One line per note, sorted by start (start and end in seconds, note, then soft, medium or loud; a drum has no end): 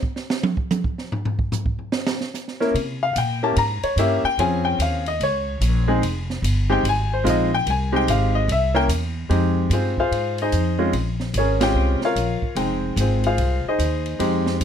0.03 kick medium
0.16 snare soft
0.30 snare medium
0.43 high tom medium
0.57 kick medium
0.71 hi-hat pedal medium
0.71 high tom medium
0.84 kick medium
0.98 snare soft
1.12 floor tom medium
1.25 floor tom medium
1.39 kick medium
1.52 floor tom loud
1.52 hi-hat pedal medium
1.66 kick medium
1.79 floor tom soft
1.92 snare medium
2.07 snare loud
2.21 snare soft
2.34 snare soft
2.34 hi-hat pedal medium
2.48 snare soft
2.60 2.74 A#3 medium
2.60 2.74 C#4 medium
2.60 2.74 E4 medium
2.60 2.74 A#4 medium
2.60 snare soft
2.74 3.15 C3 medium
2.74 ride medium
3.03 3.16 F5 medium
3.13 3.56 A#2 medium
3.13 3.16 F#5 medium
3.13 hi-hat pedal soft
3.13 ride medium
3.18 3.43 G5 medium
3.43 3.56 A#3 medium
3.43 3.56 C#4 medium
3.43 3.56 E4 medium
3.43 3.56 G4 medium
3.43 3.57 A5 medium
3.56 3.82 G#2 medium
3.56 3.84 A#5 loud
3.56 ride medium
3.83 3.98 C#5 medium
3.83 muted upright bass stroke soft
3.83 ride soft
3.96 4.22 G2 medium
3.96 4.22 A#3 medium
3.96 4.22 C#4 medium
3.96 4.23 E4 medium
3.96 4.23 G4 medium
3.96 4.25 E5 medium
3.96 hi-hat pedal medium
3.96 ride medium
4.24 4.39 G5 loud
4.24 muted upright bass stroke soft
4.38 4.78 F2 medium
4.38 5.01 C4 medium
4.38 5.01 C#4 medium
4.38 5.01 F4 medium
4.38 5.02 G#4 medium
4.38 4.65 G#5 loud
4.38 ride medium
4.65 4.79 G5 medium
4.79 5.19 D#2 medium
4.79 5.07 F5 medium
4.79 hi-hat pedal medium
4.79 ride medium
5.06 5.21 D#5 medium
5.06 ride soft
5.20 5.60 C#2 medium
5.20 5.86 C#5 medium
5.20 ride medium
5.61 6.01 A#1 medium
5.61 hi-hat pedal medium
5.61 ride medium
5.87 6.01 G#3 medium
5.87 6.01 C4 medium
5.87 6.01 D#4 medium
5.87 6.01 G#4 medium
6.02 6.41 F1 medium
6.02 ride medium
6.30 snare soft
6.42 6.82 G1 medium
6.42 hi-hat pedal medium
6.42 ride medium
6.69 6.83 G#3 medium
6.69 6.83 C4 medium
6.69 6.83 D#4 medium
6.69 6.83 G4 medium
6.69 6.85 G5 medium
6.83 7.24 G#1 medium
6.83 ride medium
6.89 7.13 G#5 loud
7.13 7.26 C5 medium
7.24 7.65 A#1 medium
7.24 7.49 G#3 medium
7.24 7.49 C4 medium
7.24 7.49 D#4 medium
7.24 7.49 F4 medium
7.24 hi-hat pedal medium
7.24 ride medium
7.30 7.53 D#5 medium
7.54 7.67 G5 loud
7.66 8.06 C2 medium
7.66 7.94 G#5 medium
7.66 ride medium
7.92 8.45 G#3 medium
7.92 8.45 C4 medium
7.92 8.45 D#4 medium
7.92 8.45 G4 medium
7.92 8.08 G5 loud
8.07 8.47 G#1 medium
8.07 8.35 F5 medium
8.07 hi-hat pedal medium
8.07 ride medium
8.35 8.48 D#5 medium
8.48 8.87 C2 medium
8.48 8.76 E5 medium
8.48 ride medium
8.74 8.87 A#3 medium
8.74 8.87 C#4 medium
8.74 8.87 E4 medium
8.74 8.88 A#4 medium
8.74 8.84 G5 loud
8.88 9.28 E2 medium
8.88 hi-hat pedal medium
8.88 ride medium
9.29 9.69 F2 medium
9.29 9.92 G#3 medium
9.29 9.73 C4 medium
9.29 9.92 D#4 medium
9.29 9.92 G4 medium
9.29 ride medium
9.70 10.10 G2 medium
9.70 9.98 F4 soft
9.70 9.98 G#4 soft
9.70 9.98 C5 medium
9.70 hi-hat pedal soft
9.70 ride medium
9.74 9.98 C4 soft
9.97 10.37 F4 medium
9.97 10.37 G#4 medium
9.97 10.37 C5 medium
9.97 10.37 F5 medium
9.97 kick medium
10.11 10.51 G#2 medium
10.11 ride medium
10.38 10.92 C5 medium
10.38 10.92 D#5 medium
10.38 ride soft
10.42 10.92 D#4 medium
10.42 10.92 G#4 medium
10.52 10.92 F2 medium
10.52 hi-hat pedal medium
10.52 ride medium
10.79 10.92 G#3 medium
10.79 10.92 C4 medium
10.79 10.92 C#4 medium
10.79 10.92 F4 medium
10.93 11.33 A#1 medium
10.93 ride medium
11.20 snare soft
11.34 11.74 G#1 medium
11.34 hi-hat pedal medium
11.34 ride medium
11.38 11.59 C#4 medium
11.38 11.62 G#4 medium
11.38 11.63 A#4 medium
11.38 11.62 C#5 medium
11.60 12.13 G#3 medium
11.60 12.13 C4 medium
11.60 12.13 C#4 medium
11.60 12.03 F4 medium
11.60 12.00 G4 medium
11.60 12.00 G5 medium
11.60 snare medium
11.60 ride medium
11.74 12.00 C2 medium
12.01 12.55 F4 medium
12.01 12.55 C#5 medium
12.01 12.55 F5 medium
12.01 muted upright bass stroke soft
12.01 snare soft
12.05 12.55 A#4 medium
12.15 12.40 A#1 medium
12.15 hi-hat pedal medium
12.15 ride medium
12.42 muted upright bass stroke soft
12.42 kick medium
12.55 12.96 F1 medium
12.55 13.71 G#3 medium
12.55 12.99 C4 soft
12.55 13.67 D#4 medium
12.55 13.71 G5 medium
12.55 ride medium
12.96 13.37 G#1 loud
12.96 13.25 C5 soft
12.96 hi-hat pedal medium
12.96 ride medium
13.00 13.25 C4 soft
13.00 13.25 F4 soft
13.00 13.25 G#4 soft
13.24 13.64 F4 medium
13.24 13.64 G#4 medium
13.24 13.64 C5 medium
13.24 13.64 F5 medium
13.24 ride soft
13.38 13.63 C2 medium
13.38 ride medium
13.65 14.18 D#4 medium
13.65 14.18 G#4 medium
13.65 14.18 C5 medium
13.65 14.18 D#5 medium
13.65 muted upright bass stroke soft
13.79 14.19 D#2 medium
13.79 hi-hat pedal soft
13.79 ride medium
14.06 ride soft
14.19 14.60 F2 medium
14.19 14.64 G#3 medium
14.19 14.64 C4 medium
14.19 14.63 D#4 medium
14.19 14.64 G4 medium
14.19 ride medium
14.46 snare medium
14.61 14.64 G2 medium
14.61 hi-hat pedal medium
14.61 ride medium